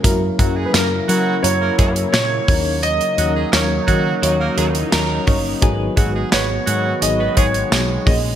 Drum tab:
HH |x-x-x-x-x-xxx-o-|xxx-x-x-x-xxx-o-|x-x-x-x-x-xxx-o-|
TB |----x-------x---|----x-------x---|----x-------x---|
SD |----o-------o---|----o-------o---|----o-------o---|
BD |o-o-------o---o-|------o-------o-|o-o-------o---o-|